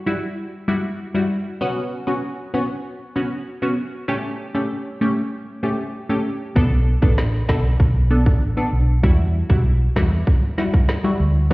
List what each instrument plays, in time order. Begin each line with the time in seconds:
0.06 synth stab G3 E4 F#4
0.68 synth stab G3 E4 F#4
1.14 synth stab G3 E4 F#4
1.61 synth stab B3 C#4 F#4
2.07 synth stab B3 C#4 F#4
2.54 synth stab B3 C#4 F#4
3.16 synth stab B3 C#4 F#4
3.62 synth stab B3 C#4 F#4
4.08 synth stab A3 C#4 G4
4.54 synth stab A3 C#4 G4
5.01 synth stab A3 C#4 G4
5.63 synth stab A3 C#4 G4
6.09 synth stab A3 C#4 G4
6.56 fingered electric bass B1, synth stab B3 D4 A4, kick
7.02 fingered electric bass A1, synth stab B3 D4 A4, kick
7.18 cross-stick, snare
7.48 fingered electric bass B1, synth stab B3 D4 A4, kick, cross-stick, snare
7.80 fingered electric bass B1, kick
8.11 synth stab B3 D4 A4
8.26 fingered electric bass A1, kick
8.57 synth stab B3 D4 A4
8.73 fingered electric bass B1
9.03 fingered electric bass E2, synth stab G3 E4 F#4, kick
9.49 fingered electric bass B1, synth stab G3 E4 F#4, kick
9.96 fingered electric bass E2, synth stab G3 E4 F#4, kick, cross-stick, snare
10.27 kick
10.58 synth stab G3 E4 F#4, snare
10.74 kick
10.89 cross-stick, snare
11.04 synth stab G3 E4 F#4
11.20 fingered electric bass D2
11.51 synth stab B3